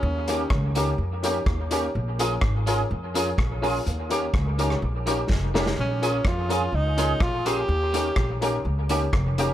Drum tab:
HH |--x---x---x---x-|--x---x---x---o-|p-x---x---x-----|--x---x---x---x-|
SD |----r-------r---|----r-------r---|----r--r----o-oo|----r-------r---|
BD |----o-------o---|----o-------o---|----o-------o---|----o-------o---|

HH |--x---x---x---x-|
SD |----r-------r---|
BD |----o-------o---|